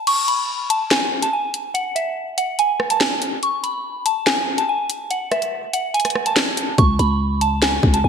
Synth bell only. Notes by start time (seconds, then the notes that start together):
0.07 C#6
0.28 B5
0.70 A5
0.91 G#5
1.22 A5
1.33 G#5
1.74 F#5
1.96 E5
2.38 F#5
2.59 G#5
2.91 A5
3.01 G#5
3.43 C#6
3.63 B5
4.06 A5
4.26 G#5
4.58 A5
4.69 G#5
5.11 F#5
5.31 E5
5.74 F#5
5.94 G#5
6.26 A5
6.78 C#6
6.99 B5
7.41 A5
7.63 G#5
7.94 A5
8.04 G#5